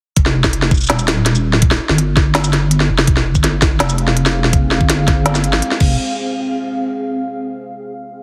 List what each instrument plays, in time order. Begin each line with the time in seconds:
0.17 wobble bass F1, kick, closed hi-hat
0.26 snare
0.44 kick, snare, shaker
0.53 closed hi-hat
0.62 snare
0.71 kick, shaker
0.74 shaker
0.77 shaker
0.81 shaker
0.84 shaker
0.87 wobble bass D#1, snare, closed hi-hat, shaker
0.99 shaker
1.08 snare, closed hi-hat
1.26 snare, closed hi-hat
1.35 shaker
1.53 snare
1.62 kick, closed hi-hat
1.71 snare
1.89 wobble bass G1, snare
1.98 closed hi-hat
2.17 kick, snare
2.35 snare, closed hi-hat
2.44 shaker
2.53 snare, closed hi-hat
2.71 closed hi-hat
2.80 snare
2.90 wobble bass F1
2.98 snare
3.07 ambient pad C4 G#4 F5, kick, closed hi-hat
3.17 snare
3.35 wobble bass G1, kick, shaker
3.44 snare, closed hi-hat
3.62 kick, snare, shaker
3.80 wobble bass F1, snare, closed hi-hat
3.89 shaker
3.98 closed hi-hat
4.08 snare
4.17 closed hi-hat
4.26 snare, shaker
4.44 snare
4.53 kick, closed hi-hat
4.71 snare
4.81 wobble bass G1, kick
4.90 snare, closed hi-hat
5.08 kick, snare, closed hi-hat
5.26 snare, closed hi-hat
5.35 snare, shaker
5.44 closed hi-hat
5.53 wobble bass G#1, snare
5.62 closed hi-hat
5.71 snare
5.80 wobble bass F1, kick, crash